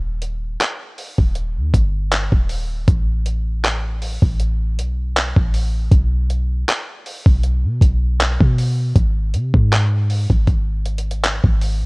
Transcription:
Already playing: 808-style bass D#1
0.22 closed hi-hat
0.60 clap, closed hi-hat
0.98 open hi-hat
1.18 808-style bass D#1, kick
1.35 closed hi-hat
1.57 808-style bass D#2
1.74 808-style bass G1, kick, closed hi-hat
2.12 clap, closed hi-hat
2.32 808-style bass D#1, kick
2.49 open hi-hat
2.88 808-style bass A1, kick, closed hi-hat
3.26 closed hi-hat
3.64 clap, closed hi-hat
4.02 open hi-hat
4.22 808-style bass A1, kick
4.40 closed hi-hat
4.78 808-style bass B1, closed hi-hat
5.16 clap, closed hi-hat
5.36 808-style bass A1, kick
5.54 open hi-hat
5.92 808-style bass B1, kick, closed hi-hat
6.30 closed hi-hat
6.68 clap, closed hi-hat
7.06 open hi-hat
7.26 808-style bass B1, kick
7.43 closed hi-hat
7.64 808-style bass B2
7.81 808-style bass B1, kick, closed hi-hat
8.20 clap, closed hi-hat
8.40 808-style bass B2, kick
8.58 open hi-hat
8.95 808-style bass G#1, kick, closed hi-hat
9.34 808-style bass C3, closed hi-hat
9.54 808-style bass G#2, kick
9.72 clap, closed hi-hat
10.10 open hi-hat
10.30 808-style bass G#1, kick
10.47 kick, closed hi-hat
10.85 closed hi-hat
10.98 closed hi-hat
11.11 closed hi-hat
11.24 clap, closed hi-hat
11.44 808-style bass G#1, kick
11.61 open hi-hat
11.82 808-style bass D#2

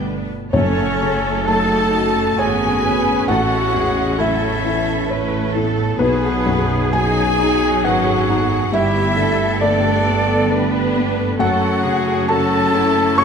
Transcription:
Already playing: double bass section G1, french horn section A3 B3, felt piano A3 D4 B4, viola section B3 D4, violin section B4
0.52 double bass section F#1, timpani F#2, felt piano F#2 C#5, viola section A3 C#4, french horn section A3 C#4, clarinet C#4, violin section F#4 C#5, cello section A4, flute C#5
1.00 felt piano C#3, viola section A3
1.46 viola section F#3 D#4, felt piano A3 A5, clarinet A4, flute A5, violin section A5
1.93 viola section A3, felt piano F#4
2.38 double bass section G#1, viola section B3 C#4, cello section F#4, clarinet G#4, felt piano C#5 G#5, flute G#5, violin section G#5
2.83 viola section B3, felt piano F#4, cello section B4
3.27 double bass section A1, felt piano A1 F#5, french horn section E3, viola section A3, violin section E4 F#5, clarinet F#4, cello section A4, flute F#5
3.74 felt piano E2, viola section G#3, cello section G#4
4.18 viola section F#3, felt piano A3 E5, clarinet E4, violin section A4 E5, cello section A4, flute E5
4.65 viola section E3, felt piano E4
5.09 viola section A3 C#4, cello section B4, felt piano C#5
5.54 viola section B3, felt piano E4, cello section A4
5.99 felt piano B1 B4, double bass section B1, viola section F#3 B3, french horn section F#3 D#4, clarinet B3, cello section G#4, flute B4, violin section B4
6.46 felt piano F#2
6.92 felt piano F#3 G#5, viola section F#3 D#4, violin section F#4 G#5, clarinet G#4, flute G#5
7.39 felt piano D#4, viola section D#4
7.83 double bass section G#1, viola section C#4, clarinet F#4, violin section A4 F#5, felt piano B4 F#5, flute F#5
8.29 viola section B3, felt piano D#4
8.72 double bass section G1, felt piano G2 E5, viola section G3 B3, french horn section A3 B3, clarinet E4, violin section G4 E5, cello section G4, flute E5
9.17 felt piano D3, violin section G4, cello section A4
9.60 viola section A3, felt piano A3 D5, clarinet D4, flute D5, violin section D5
10.06 felt piano B3
10.50 viola section B3 D4, violin section G4, felt piano A4, cello section B4
10.96 felt piano B3
11.39 double bass section F#1, felt piano F#2 F#5, viola section F#3 C#4, french horn section A3 C#4, clarinet F#4, violin section A4 F#5, cello section A4, flute F#5
11.84 felt piano C#3, cello section G#4
12.28 felt piano A3 A5, cello section F#4, clarinet A4, flute A5, violin section A5
12.74 felt piano C#4, cello section E4
13.17 cello section F#4, felt piano F#4 C#6, clarinet C#5, flute C#6, violin section C#6

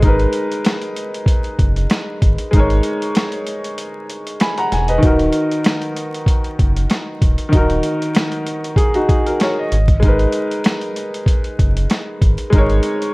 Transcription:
Already playing: sub bass G#1
0.00 upright piano G#3 D#4, kick, closed hi-hat
0.05 upright piano A#4 B4
0.20 closed hi-hat
0.33 closed hi-hat
0.52 closed hi-hat
0.65 cross-stick, snare, closed hi-hat
0.82 closed hi-hat
0.97 closed hi-hat
1.15 closed hi-hat
1.26 kick, closed hi-hat
1.44 closed hi-hat
1.59 sub bass F#1, kick, closed hi-hat
1.77 closed hi-hat
1.90 cross-stick, snare, closed hi-hat
2.22 sub bass G#1, kick, closed hi-hat
2.38 closed hi-hat
2.51 sub bass G#1, upright piano G#3 D#4, kick, closed hi-hat
2.56 upright piano A#4 C#5
2.70 closed hi-hat
2.83 closed hi-hat
3.02 closed hi-hat
3.15 cross-stick, snare, closed hi-hat
3.32 closed hi-hat
3.47 closed hi-hat
3.64 closed hi-hat
3.78 closed hi-hat
4.10 closed hi-hat
4.27 closed hi-hat
4.40 upright piano G#5 B5, cross-stick, snare, closed hi-hat
4.58 upright piano F#5 A#5, closed hi-hat
4.72 sub bass E1, upright piano G#5, snare, closed hi-hat
4.88 upright piano B4 D#5, closed hi-hat
4.98 upright piano D#3 D#4
5.03 sub bass D#1, upright piano F#4 A#4, kick, closed hi-hat
5.19 closed hi-hat
5.33 closed hi-hat
5.52 closed hi-hat
5.64 cross-stick, snare, closed hi-hat
5.82 closed hi-hat
5.96 closed hi-hat
6.14 closed hi-hat
6.26 kick, closed hi-hat
6.44 closed hi-hat
6.59 sub bass F#1, kick, closed hi-hat
6.76 closed hi-hat
6.90 cross-stick, snare, closed hi-hat
7.22 sub bass D#1, kick, closed hi-hat
7.38 closed hi-hat
7.49 upright piano D#3 D#4, closed hi-hat
7.53 sub bass D#1, upright piano F#4, kick
7.57 upright piano A#4
7.69 closed hi-hat
7.83 closed hi-hat
8.02 closed hi-hat
8.14 cross-stick, snare, closed hi-hat
8.32 closed hi-hat
8.46 closed hi-hat
8.64 closed hi-hat
8.76 upright piano G#4, kick, closed hi-hat
8.94 upright piano D#4 F#4, closed hi-hat
9.08 upright piano G#4, kick, closed hi-hat
9.26 upright piano F#4 A#4, closed hi-hat
9.40 upright piano A#4 C#5, cross-stick, snare, closed hi-hat
9.59 upright piano D#5
9.72 sub bass G#1, closed hi-hat
9.88 kick, closed hi-hat
10.00 upright piano G#3 D#4, kick, closed hi-hat
10.05 upright piano A#4 B4
10.19 closed hi-hat
10.33 closed hi-hat
10.51 closed hi-hat
10.64 cross-stick, snare, closed hi-hat
10.81 closed hi-hat
10.96 closed hi-hat
11.14 closed hi-hat
11.26 kick, closed hi-hat
11.44 closed hi-hat
11.59 sub bass F#1, kick, closed hi-hat
11.77 closed hi-hat
11.90 cross-stick, snare, closed hi-hat
12.22 sub bass G#1, kick, closed hi-hat
12.38 closed hi-hat
12.50 sub bass G#1, upright piano G#3 D#4, kick, closed hi-hat
12.55 upright piano A#4 C#5
12.70 closed hi-hat
12.83 closed hi-hat
13.02 closed hi-hat

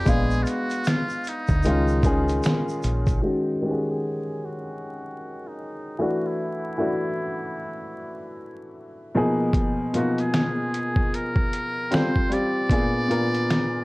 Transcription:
Already playing: muted trumpet G4
0.05 fingered electric bass A#1, upright piano G#3 B3 D4 F5, muted trumpet G#4, kick, closed hi-hat, shaker
0.31 shaker
0.43 muted trumpet F4, shaker
0.47 muted trumpet F#4, closed hi-hat
0.70 closed hi-hat, shaker
0.84 finger snap, snare, closed hi-hat, shaker
0.88 muted trumpet F4
1.09 shaker
1.24 closed hi-hat, shaker
1.29 muted trumpet D#4
1.48 fingered electric bass D2, kick, shaker
1.63 fingered electric bass C#2, upright piano D#3 G#3 C#4, closed hi-hat, shaker
1.67 upright piano F4
1.88 shaker
2.03 upright piano D#3 G#3 C#4 G#4, kick, closed hi-hat, shaker
2.28 closed hi-hat, shaker
2.43 finger snap, snare, closed hi-hat, shaker
2.69 shaker
2.83 fingered electric bass A#1, closed hi-hat, shaker
3.06 kick, closed hi-hat, shaker
3.22 upright piano D#3 G#3 C#4 F#4
3.62 upright piano D#3 G#3 C#4 G4
3.66 muted trumpet F#4
3.71 upright piano G#4
3.90 muted trumpet G#4
4.45 muted trumpet F#4
5.47 muted trumpet D#4
5.99 upright piano E3 A3 D4 F#4, muted trumpet F#4
6.26 muted trumpet E4
6.78 upright piano E3 A3 D4 F#4
9.15 upright piano B2 F3 A#3 D#4 G#4
9.53 kick, closed hi-hat
9.93 upright piano B2 F3 A#3 D#4 F4, muted trumpet F#4, closed hi-hat
10.18 muted trumpet G#4, closed hi-hat
10.34 finger snap, snare, closed hi-hat
10.74 closed hi-hat
10.96 kick
11.14 muted trumpet A#4, closed hi-hat
11.36 kick
11.53 closed hi-hat
11.91 upright piano G3 C4 F4 A4, finger snap, snare, closed hi-hat
11.95 muted trumpet C5
12.16 kick
12.30 upright piano G3 C4 F4 G4, muted trumpet D5, closed hi-hat
12.70 upright piano A#2 B3 D4 F4 G#4, kick, closed hi-hat
13.08 upright piano A#2 B3 D4 F4 A#4, closed hi-hat
13.34 closed hi-hat
13.50 finger snap, snare, closed hi-hat

